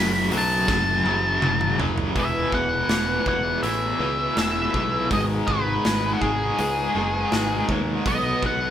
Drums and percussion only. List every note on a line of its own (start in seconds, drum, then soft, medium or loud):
0.31 open hi-hat medium
0.68 kick loud
0.68 snare medium
1.06 high tom medium
1.42 mid tom medium
1.61 mid tom medium
1.80 floor tom loud
1.98 floor tom medium
2.16 kick medium
2.16 open hi-hat soft
2.52 kick medium
2.89 snare loud
2.89 open hi-hat soft
3.26 kick medium
3.63 open hi-hat medium
4.37 snare loud
4.37 open hi-hat medium
4.74 kick medium
5.11 kick loud
5.11 open hi-hat medium
5.48 kick medium
5.85 snare loud
5.85 open hi-hat medium
6.22 kick medium
6.59 open hi-hat soft
7.32 snare loud
7.32 open hi-hat soft
7.69 kick medium
8.06 kick loud
8.06 open hi-hat soft
8.43 kick medium